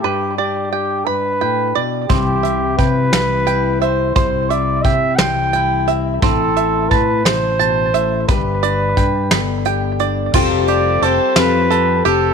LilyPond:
<<
  \new Staff \with { instrumentName = "Five-string banjo" } { \time 6/8 \key c \major \tempo 4. = 58 b'8 d''8 g''8 b''8 g''8 d''8 | c'8 e''8 g''4 g''8 e''8 | c''8 e''8 g''8 c'''8 g''8 e''8 | c'8 e''8 a''8 c'''8 a''8 e''8 |
b'8 d''8 g''8 b''8 g''8 d''8 | f'8 g'8 a'8 f''8 a'8 g'8 | }
  \new Staff \with { instrumentName = "Trumpet" } { \time 6/8 \key c \major g'8 g'8 g'8 b'4 r8 | g'4 b'4. c''8 | c''8 d''8 e''8 g''4 r8 | a'4 b'8 c''4. |
b'2 r4 | r8 d''8 c''8 b'4 a'8 | }
  \new Staff \with { instrumentName = "Twelve-string acoustic guitar" } { \time 6/8 \key c \major r2. | r2. | r2. | r2. |
r2. | <f g c' g' a'>4 <g c' g' a'>8 <f g c' g' a'>4 <c' g' a'>8 | }
  \new Staff \with { instrumentName = "Steel-string acoustic guitar" } { \clef bass \time 6/8 \key c \major << { d'8 d'2~ d'8 | <e g c' e'>8 c'4 g8 e'8 c'8 | e'8 c'4 g8 e'8 c'8 | e'2. |
g'8 d'4 b8 g'8 d'8 | r2. | } \\ { g,4. g,8 a,8 b,8 | c4. e4. | c4. e4. | a,4. c8 b,8 a,8 |
g,4. d4. | r2. | } >> }
  \new Staff \with { instrumentName = "Fingered electric bass" } { \clef bass \time 6/8 \key c \major r2. | c,4 c8 c,4. | c,4 c8 c,4. | a,,4 a,8 a,,4. |
g,,4 g,8 g,,4. | f,,4 f,,16 r16 f,4 f,,8 | }
  \new DrumStaff \with { instrumentName = "Drums" } \drummode { \time 6/8 r4. r4. | <hh bd>8 hh8 <hh bd>8 <hh sn>8 hh8 hh8 | <hh bd>8 hh8 <hh bd>8 <hh sn>8 hh8 hh8 | <hh bd>8 hh8 <hh bd>8 <hh sn>8 hh8 hh8 |
<hh bd>8 hh8 <hh bd>8 <hh sn>8 hh8 hh8 | <cymc bd>8 hh8 hh8 <hh sn>8 hh8 hh8 | }
>>